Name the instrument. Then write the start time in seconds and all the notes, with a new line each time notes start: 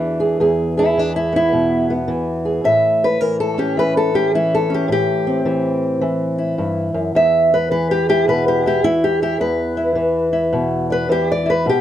steel-string acoustic guitar
Already playing: E2 E3 B3 D4 G#4
0.20 G#4
0.40 E2 G#4
0.77 E4 G#4
0.98 E3 D4
1.16 E4
1.33 B3 E4
1.53 B2
1.90 B3
2.08 E3
2.45 G#4
2.64 A2 E5
3.04 B4
3.21 E3 A#4
3.40 A4
3.58 C#4 G4
3.77 E3 B4
3.97 A4
4.14 C#4 G4
4.35 E3 E4
4.55 A4
4.70 C#4
4.74 G4
4.88 A2
4.92 G4
5.27 C4
5.45 E3
6.01 E3
6.38 E4
6.58 G2
6.94 F#2
7.15 E2 E5
7.54 B4
7.71 E3 B4
7.91 G4
8.09 E4 G4
8.28 B2 B4
8.48 G4
8.66 E4 G4
8.84 E3 E4
9.04 G4
9.22 E4 G4
9.40 E2 B4
9.77 E4
9.95 E3
10.33 E4
10.53 B2
10.90 B4 D5
11.09 E3 G4
11.32 D5
11.46 E4
11.50 B4
11.66 B2 G4